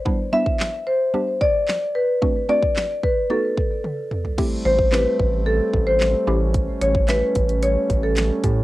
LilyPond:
<<
  \new Staff \with { instrumentName = "Marimba" } { \time 4/4 \key a \dorian \tempo 4 = 111 r8 e''4 c''8 r8 d''4 b'8 | r8 d''4 b'8 a'4. r8 | r8 c''8 b'4 a'8. c''8. r8 | r8 cis''8 b'4 cis''8. a'8. r8 | }
  \new Staff \with { instrumentName = "Synth pluck" } { \time 4/4 \key a \dorian <g b d' e'>8 <g b d' e'>4 r8 <g b d' g'>4 r4 | <a c' d' fis'>8 <a c' d' fis'>4 r8 <a b dis' fis'>4 r4 | <a c' e' g'>8 r8 <a c' e' g'>4 r4. <a cis' e' g'>8~ | <a cis' e' g'>8 r8 <a cis' e' g'>4 r4. <a cis' e' g'>8 | }
  \new Staff \with { instrumentName = "Pipe organ" } { \time 4/4 \key a \dorian r1 | r1 | c'2.~ c'8 cis'8~ | cis'1 | }
  \new Staff \with { instrumentName = "Pipe organ" } { \clef bass \time 4/4 \key a \dorian r1 | r1 | <g a>1~ | <g a>1 | }
  \new Staff \with { instrumentName = "Analog synth bass" } { \clef bass \time 4/4 \key a \dorian r1 | r1 | r8 a,,4 a,,4 a,,4 a,,8~ | a,,8 a,,4 a,,4 a,,4 a,8 | }
  \new DrumStaff \with { instrumentName = "Drums" } \drummode { \time 4/4 bd8. bd16 <hc sn>4 r8 bd8 <hc sn>4 | bd8. bd16 <hc sn>8 bd8 r8 bd8 tommh8 toml16 tomfh16 | <cymc bd>8. bd16 <hc sn>8 bd8 r8 bd8 <hc sn>4 | <hh bd>8 hh16 bd16 <hc hh sn>8 <hh bd>16 hh16 hh8 <hh bd>8 <hc hh sn>8 <hh bd>8 | }
>>